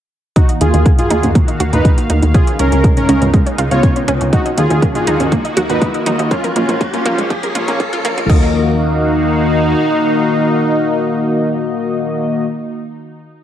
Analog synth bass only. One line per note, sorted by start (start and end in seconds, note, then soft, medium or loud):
0.61 0.72 D#2 medium
0.74 0.84 D#2 medium
1.11 1.21 D#2 medium
1.23 1.33 D#2 medium
1.60 1.71 D#2 medium
1.73 1.83 D#2 medium
2.10 2.20 D#2 medium
2.23 2.32 D#2 medium
2.59 2.70 C#2 medium
2.72 2.82 C#2 medium
3.09 3.19 C#2 medium
3.22 3.32 C#2 medium
3.58 3.69 C#2 medium
3.71 3.81 C#2 medium
4.08 4.19 C#2 medium
4.21 4.31 C#2 medium
4.58 4.68 D#2 medium
4.70 4.80 D#2 medium
5.07 5.18 D#2 medium
5.20 5.30 D#2 medium
5.57 5.67 D#2 medium
5.70 5.80 D#2 medium
6.06 6.17 D#2 medium
6.19 6.29 D#2 medium
6.56 6.67 A#1 medium
6.69 6.79 A#1 medium
7.06 7.16 A#1 medium
7.18 7.28 A#1 medium
7.55 7.66 A#1 medium
7.68 7.78 A#1 medium
8.05 8.15 A#1 medium
8.18 8.27 A#1 medium
8.30 9.74 D#2 loud